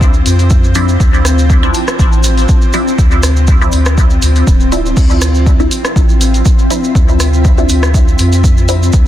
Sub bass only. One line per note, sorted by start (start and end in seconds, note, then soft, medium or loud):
0.00 0.23 D2 medium
0.26 0.97 F2 medium
1.00 1.72 D2 loud
1.99 2.46 A1 medium
2.98 3.70 D2 loud
3.73 4.20 D2 medium
4.22 4.44 D2 loud
4.47 4.94 D1 medium
4.97 5.68 D2 loud
5.96 6.43 A1 loud
6.95 7.67 D2 loud
7.70 8.16 D2 medium
8.19 8.91 F2 medium
8.94 9.08 D2 loud